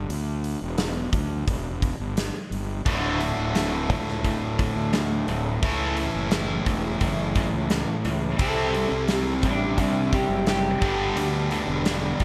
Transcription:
0.09 0.55 D2 medium
0.09 open hi-hat medium
0.44 open hi-hat medium
0.62 1.07 E1 medium
0.78 snare medium
0.78 open hi-hat medium
1.13 1.43 D2 medium
1.13 kick medium
1.13 open hi-hat medium
1.47 1.93 E1 medium
1.47 kick medium
1.47 open hi-hat medium
1.82 kick medium
1.82 open hi-hat soft
2.00 2.30 G1 medium
2.17 snare medium
2.17 open hi-hat medium
2.51 2.82 G1 medium
2.51 open hi-hat soft
2.86 3.31 D1 medium
2.86 3.19 D2 medium
2.86 3.19 A2 medium
2.86 3.19 D3 medium
2.86 5.62 A3 medium
2.86 5.62 F#4 loud
2.86 kick loud
2.86 open hi-hat medium
3.20 3.52 D2 medium
3.20 3.52 A2 medium
3.20 open hi-hat soft
3.38 3.90 D1 medium
3.55 3.86 D2 medium
3.55 3.86 A2 medium
3.55 snare medium
3.55 open hi-hat medium
3.90 4.24 C#2 medium
3.90 4.21 D2 medium
3.90 4.22 A2 medium
3.90 kick medium
3.90 open hi-hat soft
4.08 snare soft
4.24 4.70 D1 loud
4.24 4.56 D2 medium
4.24 4.56 A2 medium
4.24 kick medium
4.24 open hi-hat soft
4.58 4.90 D2 medium
4.58 4.90 A2 medium
4.58 kick medium
4.58 open hi-hat soft
4.76 5.21 D2 medium
4.93 5.25 D2 medium
4.93 5.25 A2 medium
4.93 snare loud
4.93 open hi-hat medium
5.28 5.58 D1 medium
5.28 5.60 D2 medium
5.28 5.60 A2 medium
5.28 open hi-hat soft
5.62 6.08 C#2 medium
5.62 5.96 A2 medium
5.62 5.96 E3 medium
5.62 5.96 A3 medium
5.62 8.38 C#4 medium
5.62 8.38 E4 loud
5.62 8.39 A4 medium
5.62 kick loud
5.62 open hi-hat medium
5.97 6.29 A2 medium
5.97 6.29 E3 medium
5.97 open hi-hat medium
6.15 6.60 F#1 medium
6.31 6.64 A2 medium
6.31 6.64 E3 medium
6.31 snare loud
6.31 open hi-hat medium
6.66 6.97 E1 medium
6.66 6.98 A2 medium
6.66 6.98 E3 medium
6.66 kick medium
6.66 open hi-hat medium
7.01 7.47 F#1 medium
7.01 7.33 A2 medium
7.01 7.33 E3 medium
7.01 kick medium
7.01 open hi-hat medium
7.35 7.68 A2 medium
7.35 7.68 E3 medium
7.35 kick medium
7.35 open hi-hat soft
7.53 7.84 C#2 medium
7.70 8.02 A2 medium
7.70 8.02 E3 medium
7.70 snare medium
7.70 open hi-hat medium
8.05 8.35 C#2 medium
8.05 8.37 A2 medium
8.05 8.37 E3 medium
8.05 open hi-hat soft
8.39 8.85 C2 loud
8.39 8.73 C3 medium
8.39 8.73 G3 medium
8.39 8.73 C4 medium
8.39 10.80 E4 medium
8.39 10.80 G4 loud
8.39 9.10 A4 medium
8.39 10.80 C5 loud
8.39 kick loud
8.39 open hi-hat medium
8.74 9.06 C3 medium
8.74 9.07 G3 medium
8.74 open hi-hat soft
8.91 9.43 C2 medium
9.08 9.41 C3 medium
9.08 9.41 G3 medium
9.08 9.43 G4 medium
9.08 snare medium
9.08 open hi-hat medium
9.43 9.78 A1 medium
9.43 9.76 C3 medium
9.43 9.76 G3 medium
9.43 10.11 D4 medium
9.43 kick medium
9.43 open hi-hat soft
9.78 10.23 C2 loud
9.78 10.10 C3 medium
9.78 10.10 G3 medium
9.78 kick medium
9.78 open hi-hat medium
10.13 10.44 C3 medium
10.13 10.45 G3 medium
10.13 10.47 G4 medium
10.13 kick medium
10.13 open hi-hat soft
10.29 10.75 F#1 medium
10.47 10.79 C3 medium
10.47 10.79 G3 medium
10.47 12.24 G4 loud
10.47 snare loud
10.47 open hi-hat medium
10.82 11.12 G1 medium
10.82 11.15 G2 medium
10.82 11.15 D3 loud
10.82 11.15 G3 medium
10.82 12.24 B3 medium
10.82 12.24 D4 medium
10.82 12.24 G4 medium
10.82 kick loud
10.82 open hi-hat soft
11.16 11.61 D2 medium
11.16 11.48 G2 medium
11.16 11.48 D3 medium
11.16 open hi-hat medium
11.51 11.83 G2 medium
11.51 11.83 D3 medium
11.51 open hi-hat soft
11.67 12.13 E1 medium
11.85 12.17 G2 medium
11.85 12.18 D3 medium
11.85 snare loud
11.85 open hi-hat medium
12.20 12.24 D2 medium
12.20 12.24 G2 medium
12.20 kick medium
12.20 open hi-hat soft

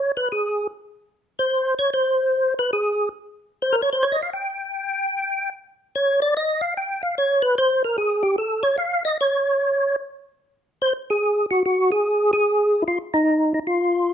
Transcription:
0.00 0.12 C#5 medium
0.17 0.29 B4 medium
0.32 0.67 G#4 medium
1.39 1.74 C5 medium
1.79 1.90 C#5 loud
1.94 2.54 C5 medium
2.59 2.71 B4 medium
2.73 3.09 G#4 medium
3.62 3.76 C5 medium
3.73 3.81 A#4 medium
3.82 3.90 C#5 medium
3.93 4.05 C5 medium
4.03 4.16 C#5 medium
4.12 4.21 D#5 medium
4.22 4.30 F5 medium
4.33 5.50 G5 medium
5.95 6.20 C#5 medium
6.22 6.34 D5 medium
6.37 6.61 D#5 medium
6.61 6.74 F5 medium
6.77 7.02 G5 loud
7.03 7.15 F5 medium
7.18 7.42 C#5 medium
7.42 7.55 B4 loud
7.58 7.83 C5 medium
7.84 7.97 A#4 medium
7.98 8.23 G#4 medium
8.23 8.36 G4 medium
8.38 8.63 A4 medium
8.63 8.76 C#5 medium
8.78 9.03 F5 loud
9.05 9.18 D#5 loud
9.21 9.96 C#5 medium
10.82 10.93 C5 loud
11.10 11.46 G#4 medium
11.51 11.63 F#4 medium
11.66 11.90 F#4 medium
11.92 12.31 G#4 medium
12.33 12.83 G#4 loud
12.82 12.84 E4 medium
12.88 12.99 F4 medium
13.14 13.53 D#4 medium
13.54 13.59 D#4 medium
13.67 14.13 F4 medium

